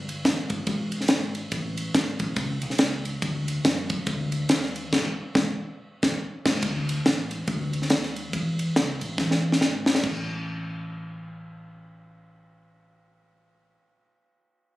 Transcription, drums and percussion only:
0.09 ride
0.25 kick, snare, ride
0.50 kick, ride
0.67 kick, ride
0.92 ride
1.01 snare
1.08 snare, ride
1.35 ride
1.52 kick, ride
1.77 ride
1.95 kick, snare, ride
2.19 kick, ride
2.36 kick, ride
2.62 ride
2.70 snare
2.78 snare, ride
3.05 ride
3.22 kick, ride
3.48 ride
3.65 kick, snare, ride
3.90 kick, ride
4.07 kick, ride
4.32 ride
4.49 snare, ride
4.62 snare
4.76 ride
4.93 kick, snare, crash
5.35 kick, snare
6.03 kick, snare
6.46 kick, snare, crash
6.62 kick, ride
6.89 ride
7.06 snare, ride
7.31 ride
7.47 kick, ride
7.73 ride
7.82 snare
7.90 snare, ride
8.03 snare
8.16 ride
8.33 kick, ride
8.59 ride
8.76 snare, ride
9.01 ride
9.18 kick, snare
9.31 snare
9.52 snare
9.61 snare
9.86 snare
9.95 snare
10.04 kick, crash

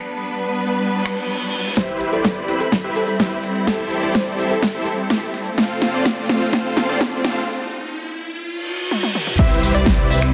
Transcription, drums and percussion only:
1.06 finger snap
1.77 kick, snare, closed hi-hat
2.01 open hi-hat
2.13 closed hi-hat
2.25 kick, snare, closed hi-hat
2.48 open hi-hat
2.60 closed hi-hat
2.72 kick, snare, closed hi-hat
2.96 open hi-hat
3.08 closed hi-hat
3.20 kick, snare, closed hi-hat
3.32 closed hi-hat
3.44 open hi-hat
3.55 closed hi-hat
3.67 kick, snare, closed hi-hat
3.91 open hi-hat
4.03 closed hi-hat
4.15 kick, snare, closed hi-hat
4.39 open hi-hat
4.51 closed hi-hat
4.63 kick, snare, closed hi-hat
4.86 open hi-hat
4.98 closed hi-hat
5.10 kick, snare, closed hi-hat
5.22 closed hi-hat
5.34 open hi-hat
5.46 closed hi-hat
5.58 kick, snare, closed hi-hat
5.82 snare, open hi-hat
5.94 closed hi-hat
6.05 kick, snare, closed hi-hat
6.29 snare, open hi-hat
6.41 closed hi-hat
6.53 kick, snare, closed hi-hat
6.77 snare, open hi-hat
6.89 closed hi-hat
7.01 kick, snare, closed hi-hat
7.13 closed hi-hat
7.25 snare, open hi-hat
7.37 closed hi-hat
8.91 high tom
9.03 high tom
9.15 mid tom
9.27 mid tom
9.39 kick, closed hi-hat, crash, tambourine
9.51 closed hi-hat, tambourine
9.63 open hi-hat, tambourine
9.75 closed hi-hat, tambourine
9.86 kick, snare, closed hi-hat, tambourine
9.98 closed hi-hat
10.10 open hi-hat, tambourine
10.22 finger snap, closed hi-hat, tambourine

